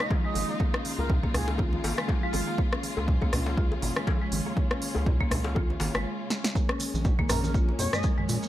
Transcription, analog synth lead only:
0.00 0.10 D#5 medium
0.25 0.47 D#5 medium
0.50 0.60 D#5 medium
0.99 1.09 A#4 medium
1.35 1.48 G#4 medium
2.23 2.59 F4 medium
7.30 7.39 A#4 medium
7.43 7.50 A#4 medium
7.79 7.90 C#5 medium
7.93 8.03 D#5 medium

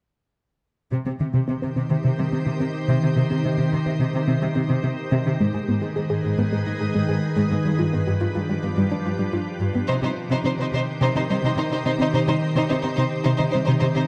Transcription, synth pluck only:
0.92 1.00 C3 medium
1.06 1.15 C4 soft
1.20 1.28 D#3 soft
1.34 1.42 C3 medium
1.48 1.56 C4 soft
1.62 1.70 C4 soft
1.76 1.85 C3 medium
1.91 1.99 D#3 soft
2.05 2.13 C3 medium
2.19 2.27 G3 soft
2.33 2.41 C4 soft
2.46 2.55 C3 medium
2.60 2.68 C4 soft
2.88 2.97 C3 medium
3.02 3.10 D#3 soft
3.16 3.25 C3 medium
3.30 3.39 C4 soft
3.44 3.52 D#3 soft
3.58 3.66 C3 medium
3.72 3.80 C4 soft
3.86 3.94 C4 soft
4.00 4.08 C3 medium
4.14 4.22 D#3 soft
4.28 4.36 C3 medium
4.42 4.50 G3 soft
4.56 4.64 C4 soft
4.69 4.78 C3 medium
4.84 4.92 C4 soft
5.12 5.20 C3 medium
5.26 5.35 D#3 soft
5.40 5.49 G#3 medium
5.54 5.63 G#4 soft
5.69 5.77 B3 soft
5.82 5.90 G#3 medium
5.96 6.04 G#4 medium
6.10 6.18 G#4 medium
6.25 6.33 G#3 medium
6.39 6.47 B3 soft
6.52 6.61 G#3 medium
6.67 6.75 D#4 soft
6.81 6.89 G#4 soft
6.95 7.03 G#3 medium
7.09 7.17 G#4 soft
7.37 7.45 G#3 medium
7.51 7.59 B3 medium
7.65 7.74 G3 medium
7.79 7.87 F4 soft
7.93 8.01 B3 soft
8.07 8.15 G3 medium
8.21 8.29 F4 medium
8.35 8.43 F4 soft
8.49 8.57 G3 medium
8.64 8.72 B3 soft
8.78 8.86 G3 medium
8.91 9.00 D4 soft
9.06 9.14 F4 soft
9.19 9.27 G3 medium
9.33 9.42 F4 soft
9.61 9.69 G3 medium
9.75 9.84 B3 soft
9.89 9.97 C3 medium
10.03 10.11 G3 soft
10.31 10.40 C3 medium
10.45 10.54 C4 soft
10.59 10.68 C4 soft
10.74 10.82 C3 medium
11.01 11.09 C3 medium
11.16 11.24 D#3 soft
11.30 11.38 G3 soft
11.44 11.52 C3 medium
11.58 11.66 C4 soft
11.72 11.80 C4 soft
11.86 11.94 C3 medium
11.99 12.08 C4 medium
12.14 12.22 C3 medium
12.28 12.36 G3 soft
12.55 12.64 C3 medium
12.70 12.78 C4 medium
12.84 12.92 C4 soft
12.98 13.06 C3 medium
13.26 13.34 C3 medium
13.40 13.48 D#3 medium
13.54 13.63 G3 soft
13.68 13.76 C3 medium
13.82 13.91 C4 soft
13.97 14.05 C4 soft

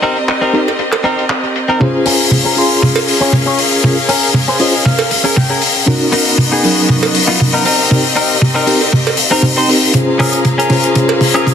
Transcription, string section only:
0.00 1.79 C4 medium
0.00 1.79 G4 medium
0.00 1.77 A#4 medium
0.00 1.77 D#5 medium
1.81 5.84 C#4 medium
1.81 5.84 G#4 medium
1.81 7.62 A#4 medium
1.81 5.84 F5 medium
5.87 7.64 B3 medium
5.87 7.64 F#4 medium
5.87 9.90 D#5 medium
7.65 9.92 C4 medium
7.65 9.92 G4 medium
7.65 9.92 A#4 medium
9.94 11.54 C#4 medium
9.94 11.54 G#4 medium
9.94 11.54 F5 medium
9.94 11.54 A#5 medium

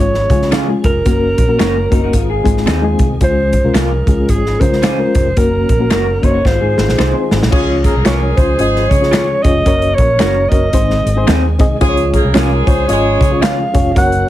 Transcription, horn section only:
7.52 7.78 G#3 loud
7.52 7.78 G#4 loud
7.84 8.02 A#3 medium
7.84 8.01 A#4 medium
8.06 8.56 G#3 medium
8.06 8.56 G#4 loud
8.59 9.10 G#3 loud
8.59 9.10 G#4 loud
11.81 12.07 G#3 loud
11.81 12.07 G#4 loud
12.13 12.31 A#3 medium
12.13 12.31 A#4 loud
12.35 12.86 G#3 medium
12.35 12.86 G#4 loud
12.89 13.40 G#3 loud
12.89 13.40 G#4 loud

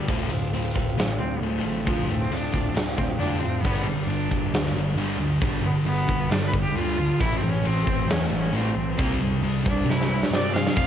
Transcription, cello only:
1.19 1.43 C4 medium
1.42 1.88 A3 medium
1.86 2.11 F3 loud
2.09 2.23 A3 medium
2.21 2.35 C4 medium
2.34 2.77 D4 loud
2.97 3.07 C4 medium
3.18 3.40 D4 loud
3.39 3.62 C4 medium
3.60 3.84 B3 loud
3.83 4.07 G3 medium
4.05 4.51 D4 loud
5.65 5.75 B3 medium
5.86 6.32 B3 loud
6.30 6.46 D4 loud
6.47 6.54 B4 medium
6.63 6.77 G4 medium
6.75 7.22 F4 loud
7.21 7.38 E4 loud
7.37 7.51 C4 medium
7.49 7.67 C#4 medium
7.65 8.11 C4 loud
8.10 8.27 C#4 medium
8.25 8.42 A3 medium
8.40 8.58 C#4 medium
8.56 8.99 C4 medium
9.02 9.11 A#3 medium
9.70 9.91 D4 loud
9.90 10.31 E4 loud
10.31 10.54 D5 loud
10.53 10.75 F5 loud
10.75 10.85 F5 loud

